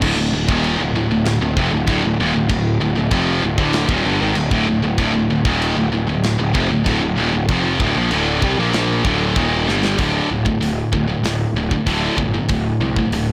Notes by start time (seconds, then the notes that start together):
0.02 D1 D2 A2, kick, china, crash
0.16 D1 D2 A2
0.32 D1 D2 A2
0.48 D#1 D#2 A#2 D#3, kick
0.64 china
0.78 D1 D2 A2
0.94 D1 D2 A2
1.10 D1 D2 A2
1.25 snare, china
1.41 D1 D2 A2
1.56 F1 F2 C3, kick
1.72 D1 D2 A2
1.87 D1 D2 A2, kick, china
2.04 D1 D2 A2
2.20 D#1 D#2 A#2
2.35 D1 D2 A2
2.49 D1 D2 A2, kick, china
2.81 D1 D2 A2
2.97 D1 D2 A2
3.11 F1 F2 C3 F3, kick, china
3.44 D1 D2 A2
3.58 D1 D2 A2 D3, kick
3.73 snare, china
3.88 D#1 D#2 A#2, kick
4.05 G1 G2 D3
4.21 G#1 G#2 D#3
4.35 D1 D2 A2, china
4.51 D1 D2 A2, kick
4.68 D1 D2 A2
4.83 D1 D2 A2
4.98 D1 D2 A2, kick, china
5.13 D1 D2 A2
5.30 D1 D2 A2
5.45 D#1 D#2 A#2 D#3, kick
5.62 china
5.76 D1 D2 A2
5.91 D1 D2 A2
6.07 D1 D2 A2
6.23 snare, china
6.39 D1 D2 A2
6.54 F1 F2 C3, kick
6.71 D1 D2 A2
6.86 D1 D2 A2, kick, china
7.02 D1 D2 A2
7.18 D#1 D#2 A#2
7.33 D1 D2 A2
7.49 F1 F2 C3 F3, kick, china
7.80 D1 D2, kick
7.84 A2
7.97 A#1 A#2 F3
8.11 D1 D2 A2 D3, china
8.42 C2 C3 G3, kick
8.58 A#1 A#2 F3 A#3
8.73 snare, china
9.05 D1 D2 A2 D3, kick
9.36 D#1 D#2 A#2 D#3, kick, china
9.67 G1 G2 D3 G3, snare
9.85 snare
9.98 D1 D2 A2 D3, kick, open hi-hat
10.30 D1 D2 A2
10.45 D2 A2, kick
10.61 D1 D2 A2, open hi-hat
10.93 D1 D2 A2, kick
11.09 D2 A2
11.23 D1 D2 A2, snare, open hi-hat
11.54 D1 D2 A2
11.71 D2 A2, kick
11.86 D1 D2 A2 D3, kick, open hi-hat
12.17 G1 D2 A2, kick
12.34 D2 A2
12.49 D1 D2 A2, kick, open hi-hat
12.80 C2 D2 A2
12.96 D2 A2, kick
13.11 D1 D2 A2, open hi-hat